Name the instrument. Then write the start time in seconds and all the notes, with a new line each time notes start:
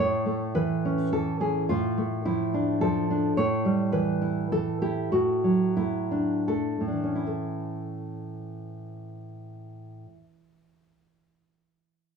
nylon-string guitar
Already playing: C#5
0.00 A2
0.26 A3
0.55 E3 B4
0.85 C#4
1.13 E3 A4
1.40 C#4 G#4
1.69 A2 F4
1.98 A3
2.25 F3 E4
2.54 D4
2.81 F3 A4
3.10 D4
3.37 A2 C#5
3.65 G3
3.92 E3 B4
4.22 E4
4.52 E3 A4
4.82 E4 G4
5.12 A2 F#4
5.44 F#3
5.77 A3 E4
6.11 D4
6.48 A3 A4
6.80 A2
6.88 D4
6.92 E3
7.03 C#4
7.15 E4
7.27 A4